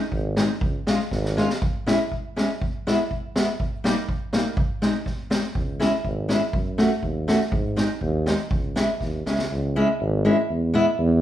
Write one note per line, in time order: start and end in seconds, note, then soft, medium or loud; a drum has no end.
0.12 0.44 G#1 medium
0.12 kick soft
0.36 0.48 G#3 medium
0.36 0.48 C4 medium
0.36 0.48 D#4 medium
0.36 snare medium
0.61 0.78 C#2 medium
0.61 kick medium
0.87 0.98 G#3 medium
0.87 0.98 C#4 medium
0.87 0.98 F4 medium
0.87 snare medium
0.99 snare soft
1.11 1.44 G#1 loud
1.11 kick soft
1.11 snare soft
1.25 snare soft
1.37 1.48 G#3 medium
1.37 1.48 C#4 medium
1.37 1.48 F4 medium
1.37 snare soft
1.50 snare medium
1.62 kick medium
1.86 1.98 G#3 medium
1.86 1.98 C#4 medium
1.86 1.98 E4 medium
1.86 snare medium
2.12 kick soft
2.36 2.47 G#3 medium
2.36 2.47 C#4 medium
2.36 2.48 E4 medium
2.36 snare medium
2.62 kick medium
2.87 2.97 G#3 medium
2.87 2.97 B3 medium
2.87 2.98 E4 medium
2.87 snare medium
3.11 kick soft
3.36 3.46 G#3 medium
3.36 3.46 B3 medium
3.36 3.47 E4 medium
3.36 snare medium
3.60 kick medium
3.84 3.95 G3 medium
3.84 3.95 A#3 medium
3.84 3.96 D#4 medium
3.84 snare medium
4.09 kick medium
4.33 4.44 G3 medium
4.33 4.44 A#3 medium
4.33 4.44 D#4 medium
4.33 snare medium
4.57 kick medium
4.82 4.93 G#3 medium
4.82 4.93 C4 medium
4.82 4.93 D#4 medium
4.82 snare medium
5.06 kick soft
5.06 snare soft
5.30 5.42 G#3 medium
5.30 5.42 C4 medium
5.30 5.42 D#4 medium
5.30 snare medium
5.43 snare soft
5.55 5.87 C#2 medium
5.55 kick medium
5.80 5.91 G#3 medium
5.80 5.91 C#4 medium
5.80 5.91 E4 medium
5.80 snare medium
6.04 6.36 G#1 medium
6.04 kick soft
6.29 6.40 G#3 medium
6.29 6.40 C#4 medium
6.29 6.40 E4 medium
6.29 snare medium
6.53 6.85 F#2 medium
6.53 kick medium
6.78 6.89 A3 medium
6.78 6.89 C#4 medium
6.78 6.90 F#4 medium
6.78 snare medium
7.02 7.34 D#2 medium
7.02 kick soft
7.28 7.39 A3 medium
7.28 7.39 C#4 medium
7.28 7.39 F#4 medium
7.28 snare medium
7.40 snare soft
7.52 7.84 G#2 medium
7.52 kick medium
7.76 7.88 G#3 medium
7.76 7.88 C4 medium
7.76 7.88 D#4 medium
7.76 snare medium
8.01 8.33 D#2 loud
8.01 kick soft
8.26 8.37 G#3 medium
8.26 8.38 C4 medium
8.26 8.38 D#4 medium
8.26 snare medium
8.39 snare soft
8.51 8.83 C#2 medium
8.51 kick medium
8.76 8.87 G#3 medium
8.76 8.87 C#4 medium
8.76 8.87 E4 medium
8.76 snare medium
9.00 9.23 D#2 medium
9.00 kick soft
9.00 snare soft
9.26 9.48 C#2 medium
9.26 9.37 G#3 medium
9.26 9.38 C#4 medium
9.26 9.38 E4 medium
9.26 snare soft
9.38 snare soft
9.51 9.83 C#2 medium
9.76 9.87 G#3 medium
9.76 9.87 C#4 medium
9.76 9.87 E4 medium
10.00 10.32 G#1 loud
10.25 10.36 G#3 medium
10.25 10.36 C#4 medium
10.25 10.36 E4 medium
10.50 10.81 E2 medium
10.74 10.84 G#3 medium
10.74 10.85 B3 medium
10.74 10.85 E4 loud
10.98 11.21 E2 loud